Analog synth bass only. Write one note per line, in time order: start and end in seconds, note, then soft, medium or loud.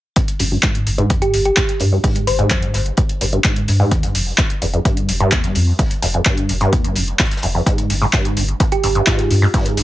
0.40 0.57 G1 medium
0.87 1.03 G1 loud
1.33 1.50 G1 loud
1.80 1.97 G2 medium
2.27 2.44 G1 medium
2.74 2.91 G1 medium
3.21 3.38 G1 medium
3.68 3.85 G2 medium
4.15 4.32 F1 medium
4.62 4.78 F1 medium
5.09 5.25 F1 medium
5.56 5.72 F2 loud
6.02 6.19 F1 medium
6.49 6.66 F1 medium
6.96 7.13 F1 loud
7.43 7.60 F1 medium
7.90 8.07 G1 medium
8.37 8.54 G1 medium
8.84 9.00 G1 loud
9.31 9.47 G2 medium
9.77 9.83 G1 loud